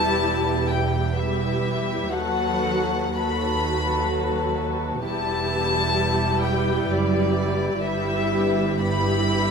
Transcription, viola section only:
0.00 1.13 G3 medium
0.00 1.13 E4 medium
1.17 2.10 G3 soft
1.17 2.10 E4 soft
2.12 3.14 F#3 medium
2.12 3.14 F#4 medium
3.15 5.02 F#3 soft
3.15 5.02 F#4 soft
5.06 7.81 G3 medium
5.06 7.78 E4 medium
7.82 8.79 G3 medium
7.82 8.79 E4 medium
8.81 9.51 G3 medium
8.81 9.51 E4 medium

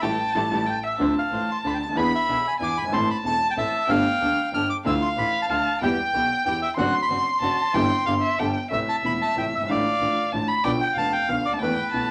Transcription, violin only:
0.02 0.34 G5 medium
0.33 0.68 A5 medium
0.66 0.85 G5 medium
0.83 0.99 E5 medium
1.00 1.98 A5 medium
1.97 2.60 B5 medium
2.61 2.95 G#5 medium
2.93 3.87 A5 medium
3.88 4.65 G5 medium
4.85 5.51 F5 medium
5.50 5.81 A5 medium
5.81 6.73 G5 medium
6.77 7.37 C6 loud
7.42 7.76 A5 medium
7.74 8.06 G5 loud
8.06 8.14 F5 medium
8.22 8.41 E5 medium
8.39 8.71 G5 medium
8.72 9.70 E5 medium
9.68 10.33 F5 medium
10.32 10.50 A5 medium
10.48 10.65 B5 loud
10.64 10.95 G5 medium
10.96 11.55 F5 medium
11.53 11.61 A5 medium
11.59 11.91 G5 medium
11.92 12.11 A5 medium

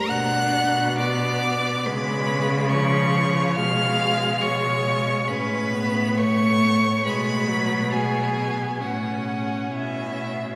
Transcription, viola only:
0.10 1.01 D4 medium
0.99 1.87 B3 medium
1.86 2.71 G#3 medium
2.72 3.59 F3 medium
3.57 5.31 G#3 medium
5.30 5.74 C#4 medium
5.73 6.19 B3 medium
6.17 7.05 A3 medium
7.06 7.50 G#3 medium
7.48 7.94 F#3 medium
7.93 8.36 B3 medium
8.37 8.82 B3 medium
8.81 10.55 C#4 medium

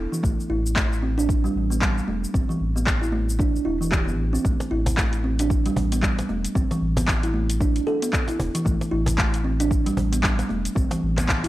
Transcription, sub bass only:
0.24 0.33 A1 medium
0.50 1.48 A1 medium
1.55 2.01 A1 medium
2.08 2.25 E1 medium
2.34 2.43 A1 loud
2.61 3.59 A1 medium
3.66 4.09 E1 medium
4.08 4.38 A1 loud
4.45 4.54 A1 loud
4.71 5.69 A1 medium
5.77 6.22 A1 medium
6.29 6.47 E1 medium
6.56 6.65 A1 medium
6.82 7.80 A1 medium
8.40 8.49 E1 medium
8.66 8.75 A1 medium
8.92 9.90 A1 medium
9.97 10.43 A1 medium
10.50 10.68 E1 medium
10.76 10.85 A1 medium
11.03 11.48 A1 medium

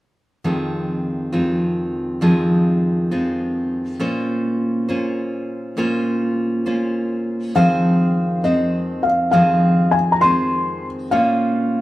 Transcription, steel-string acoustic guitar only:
0.44 1.33 F2 medium
0.44 1.32 D#3 medium
0.44 1.33 F3 medium
0.44 1.32 G#3 medium
0.44 1.32 C4 medium
0.44 1.32 F4 medium
1.32 2.20 F2 soft
1.32 2.21 D#3 soft
1.32 2.21 F3 soft
1.32 2.21 G#3 soft
1.32 2.22 C4 medium
1.32 2.22 F4 medium
2.21 3.11 F2 medium
2.21 3.11 D#3 medium
2.21 3.12 F3 medium
2.21 3.11 G#3 medium
2.21 3.11 C4 medium
2.21 3.11 F4 medium
3.11 4.01 F2 soft
3.11 4.00 D#3 soft
3.11 3.99 F3 soft
3.11 4.00 G#3 soft
3.11 4.00 C4 medium
3.11 4.00 F4 medium
3.99 4.89 A#2 medium
3.99 4.88 A#3 medium
3.99 4.88 C#4 medium
3.99 4.88 F4 medium
3.99 4.88 C5 medium
4.89 5.76 A#2 soft
4.89 5.76 A#3 soft
4.89 5.76 C#4 soft
4.89 5.78 F4 medium
4.89 5.78 C5 medium
5.77 6.66 A#2 medium
5.77 6.66 A#3 medium
5.77 6.65 C#4 medium
5.77 6.65 F4 medium
5.77 6.65 C5 medium
6.66 7.55 A#2 soft
6.66 7.55 A#3 soft
6.66 7.55 C#4 soft
6.66 7.55 F4 medium
6.66 7.55 C5 medium
7.55 8.44 F2 medium
7.55 8.43 D#3 medium
7.55 8.44 F3 medium
7.55 8.43 G#3 medium
7.55 8.44 C4 medium
7.55 8.43 C5 medium
8.44 9.31 F2 soft
8.44 9.32 D#3 soft
8.44 9.32 F3 soft
8.44 9.32 G#3 medium
8.44 9.33 C4 medium
8.44 9.33 C5 medium
9.33 10.22 F2 medium
9.33 10.22 D#3 medium
9.33 10.22 F3 medium
9.33 10.21 G#3 medium
9.33 10.22 C4 medium
9.33 10.21 C5 medium
10.22 11.12 F2 soft
10.22 11.11 D#3 soft
10.22 11.11 F3 soft
10.22 11.11 G#3 medium
10.22 11.12 C4 soft
10.22 11.12 C5 medium
11.11 11.81 A#2 medium
11.11 11.81 A#3 medium
11.11 11.81 C#4 medium
11.11 11.81 F4 medium
11.11 11.81 C5 medium

